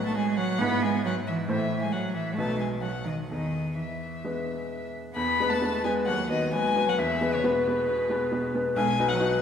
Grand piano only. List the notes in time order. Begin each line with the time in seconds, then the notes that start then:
Already playing: A2 B3 D#4 B4
0.61 G#2 B3 E4 B4
1.48 A2 A3 E4 C5
2.38 B1 F#3 D#4 B4
3.31 E2
4.24 G#3 B3 B4
5.16 E2
5.40 G#3 B3 B4
5.62 G#3 B3 B4
5.84 G#3 B3 B4
6.06 D#2
6.29 F#3 B3 B4
6.52 F#3 B3 B4
6.76 F#3 B3 B4
6.98 E2
7.21 G#3 B3 B4
7.44 G#3 B3 B4
7.67 G#3 B3 B4
7.89 B2
8.10 G#3 B3 B4
8.32 G#3 B3 B4
8.55 G#3 B3 B4
8.76 B1
8.99 F#3 D#4 B4
9.20 F#3 D#4 B4